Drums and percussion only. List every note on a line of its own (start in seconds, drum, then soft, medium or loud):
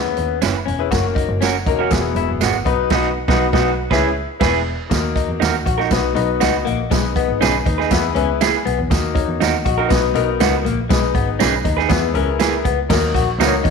0.17 closed hi-hat medium
0.41 snare loud
0.41 closed hi-hat loud
0.41 tambourine loud
0.68 closed hi-hat medium
0.92 kick loud
0.92 snare loud
0.92 closed hi-hat medium
0.92 tambourine medium
1.16 kick loud
1.16 closed hi-hat medium
1.41 snare medium
1.41 closed hi-hat medium
1.41 tambourine medium
1.66 kick medium
1.66 closed hi-hat medium
1.91 kick medium
1.91 snare loud
1.91 closed hi-hat medium
1.91 tambourine medium
2.16 closed hi-hat medium
2.41 snare medium
2.41 closed hi-hat loud
2.41 tambourine medium
2.66 kick medium
2.66 closed hi-hat medium
2.90 kick loud
2.90 snare loud
2.90 crash medium
3.28 kick loud
3.28 snare loud
3.53 kick loud
3.53 snare loud
3.91 kick loud
3.91 snare loud
4.41 kick loud
4.41 snare loud
4.41 crash medium
4.91 kick loud
4.91 snare loud
4.91 closed hi-hat medium
4.91 tambourine medium
5.16 kick medium
5.16 closed hi-hat medium
5.42 snare loud
5.42 closed hi-hat medium
5.42 tambourine medium
5.66 kick medium
5.66 closed hi-hat medium
5.80 snare soft
5.91 kick medium
5.91 snare loud
5.91 closed hi-hat medium
5.91 tambourine medium
6.16 closed hi-hat medium
6.41 snare loud
6.41 closed hi-hat medium
6.41 tambourine loud
6.67 closed hi-hat medium
6.91 kick loud
6.91 snare loud
6.91 closed hi-hat medium
6.91 tambourine medium
7.16 kick loud
7.16 closed hi-hat medium
7.42 snare loud
7.42 closed hi-hat medium
7.42 tambourine medium
7.66 kick medium
7.66 closed hi-hat medium
7.80 snare soft
7.91 kick loud
7.91 snare loud
7.91 closed hi-hat medium
7.91 tambourine medium
8.16 closed hi-hat medium
8.41 snare loud
8.41 closed hi-hat medium
8.41 tambourine loud
8.67 closed hi-hat medium
8.91 kick loud
8.91 snare loud
8.91 closed hi-hat medium
8.91 tambourine medium
9.16 kick loud
9.16 closed hi-hat medium
9.41 snare loud
9.41 closed hi-hat medium
9.41 tambourine medium
9.66 kick medium
9.66 closed hi-hat medium
9.90 kick loud
9.90 snare loud
9.90 closed hi-hat medium
9.90 tambourine medium
10.15 closed hi-hat medium
10.40 snare loud
10.40 closed hi-hat loud
10.40 tambourine loud
10.66 closed hi-hat medium
10.90 kick loud
10.90 snare loud
10.90 closed hi-hat medium
10.90 tambourine medium
11.15 kick medium
11.15 closed hi-hat medium
11.40 snare loud
11.40 closed hi-hat medium
11.40 tambourine medium
11.65 kick medium
11.65 closed hi-hat medium
11.78 snare soft
11.89 kick medium
11.89 snare loud
11.89 closed hi-hat medium
11.89 tambourine medium
12.15 closed hi-hat medium
12.39 snare loud
12.39 closed hi-hat loud
12.39 tambourine medium
12.65 kick medium
12.65 closed hi-hat medium
12.90 kick loud
12.90 snare loud
12.90 crash medium
12.90 tambourine medium
13.15 kick medium
13.15 closed hi-hat medium
13.40 snare loud
13.40 closed hi-hat medium
13.40 tambourine medium
13.65 kick medium
13.65 closed hi-hat medium